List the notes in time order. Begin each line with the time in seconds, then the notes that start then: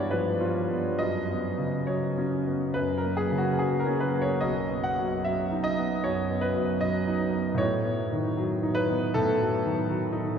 Already playing: G2 G3 B3 C#5 D5
0.11 F3 B4
0.40 F4
0.70 B3
0.99 F#2 D#5
1.30 B3
1.58 C#3
1.87 F#3 C#5
2.18 C#4
2.47 B3
2.74 F#2 B4
2.98 A#4
3.04 A#3
3.17 G#4
3.31 C#3
3.38 F#4
3.59 F#3 G#4
3.80 A#4
3.86 C#4
4.00 B4
4.15 A#3
4.22 C#5
4.41 B1 D#5
4.69 B3
4.84 F#5
4.98 F#2
5.24 F#3 E5
5.52 D#4
5.64 D#5
5.78 B3
6.04 F#2 C#5
6.30 B3
6.41 B4
6.55 F#2
6.81 F#3 D#5
7.07 D#4
7.32 B3
7.54 A2 C#5
7.85 B3
8.13 D#3
8.37 F#3
8.63 D#4
8.75 B4
8.90 B3
9.14 A2 A4
9.41 F#3
9.65 D#3
9.89 F#3
10.12 D#4